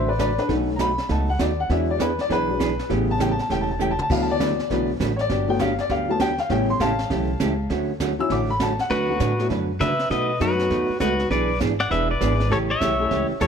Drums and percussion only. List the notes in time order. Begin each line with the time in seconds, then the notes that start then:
0.19 kick, snare, hi-hat pedal
0.38 snare
0.49 brush sweep, kick, snare
0.79 kick, snare, hi-hat pedal
0.98 snare
1.09 brush sweep, kick, snare
1.39 kick, snare, hi-hat pedal
1.70 brush sweep, kick, snare
2.00 kick, snare, hi-hat pedal
2.19 snare
2.30 brush sweep, kick, snare
2.60 kick, snare, hi-hat pedal
2.79 snare
2.90 brush sweep, kick, snare
3.20 kick, snare, hi-hat pedal
3.39 snare
3.50 brush sweep, kick, snare
3.80 hi-hat pedal
3.99 mid tom
4.10 brush sweep, kick, snare, crash
4.40 kick, snare, hi-hat pedal
4.59 snare
4.70 brush sweep, kick, snare
5.00 kick, snare, hi-hat pedal
5.19 snare
5.29 brush sweep, kick, snare
5.59 kick, snare, hi-hat pedal
5.78 snare
5.89 brush sweep, kick, snare
6.20 kick, snare, hi-hat pedal
6.38 snare
6.50 brush sweep, kick, snare
6.80 kick, snare, hi-hat pedal
6.99 snare
7.10 brush sweep, kick, snare
7.40 kick, snare, hi-hat pedal
7.70 brush sweep, kick, snare
8.00 kick, snare, hi-hat pedal
8.30 brush sweep, kick, snare
8.60 kick, snare, hi-hat pedal
8.79 snare
8.90 brush sweep, kick, snare
9.20 kick, snare, hi-hat pedal
9.39 snare
9.50 brush sweep, kick, snare
9.80 kick, snare, hi-hat pedal
9.99 snare
10.10 brush sweep, kick, snare
10.40 kick, snare, hi-hat pedal
10.59 snare
10.70 brush sweep, kick, snare
11.00 kick, snare, hi-hat pedal
11.19 snare
11.30 brush sweep, kick, snare
11.60 kick, snare, hi-hat pedal
11.80 snare
11.91 brush sweep, kick, snare
12.21 kick, snare, hi-hat pedal
12.40 snare
12.51 brush sweep, kick, snare
12.81 kick, snare, hi-hat pedal
13.11 brush sweep, kick, snare
13.41 kick, snare, hi-hat pedal